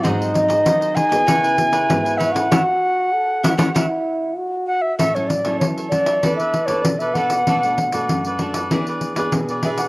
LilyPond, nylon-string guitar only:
\new Staff \with { instrumentName = "Nylon-string guitar" } { \time 4/4 \key fis \minor \tempo 4 = 97 << { <fis bis dis'>8 <fis bis dis'>16 r16 <fis bis dis'>8 r16 <b fis' gis'>8. <b fis' gis'>16 r16 <b fis' gis'>8. <cis' e' a'>16 | <cis' e' fis'>16 r4 r16 <cis' e' fis'>16 <cis' e' fis'>16 <cis' e' fis'>16 r4. r16 | \key a \major r16 <fis cis' e'>8 <fis cis' e'>8. <fis cis' e'>8 <b d' a'>8 r16 <b d' a'>8. <b d' a'>16 r16 | <a d' fis'>16 <a d' fis'>8 <a d' fis'>8. <a d' fis'>8 <b d' gis'>8. <b d' gis'>8. <b d' gis'>8 | } \\ { gis,4 dis4 cis4 gis,4 | r1 | a,4 e4 e4 b,4 | b,4 fis,4 e4 b,4 | } >> }